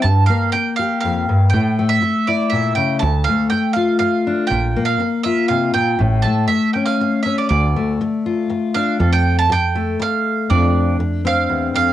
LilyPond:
<<
  \new Staff \with { instrumentName = "Mandolin" } { \time 3/4 \key d \minor \tempo 4 = 120 a''8 f''8 g''8 f''8 f''4 | g''8. e''8. d''8 e''8 g''8 | a''8 f''8 g''8 f''8 f''4 | g''8. f''8. e''8 f''8 g''8~ |
g''8 a''8 e''8 g''16 f''8. e''16 d''16 | d''2 r8 f''8~ | f''16 g''8 a''16 g''4 f''4 | d''4 r8 f''4 f''8 | }
  \new Staff \with { instrumentName = "Steel-string acoustic guitar" } { \time 3/4 \key d \minor << { g8 bes4 g'4. | r8 a4 e'4. | r8 a4 f'4 d'8 | r8 bes4 f'4. |
r8 a4 cis'4 cis'8 | r8 a4 f'4 d'8 | a'4. a4. | d'4. c'4. | } \\ { g,4 r4 f,8 g,8 | a,4 r4 bes,8 cis8 | d,4 r2 | bes,4 r4 c8 bes,8 |
a,4 r2 | d,4 r2 | f,4 r2 | f,4 r4 e,8 f,8 | } >> }
  \new Staff \with { instrumentName = "Fretless electric bass" } { \clef bass \time 3/4 \key d \minor g,8 r2 r8 | a,8 r2 r8 | d,8 r2 r8 | bes,,8 r2 r8 |
a,,8 r2 r8 | d,8 r2 r8 | f,2 r4 | f,2 r4 | }
>>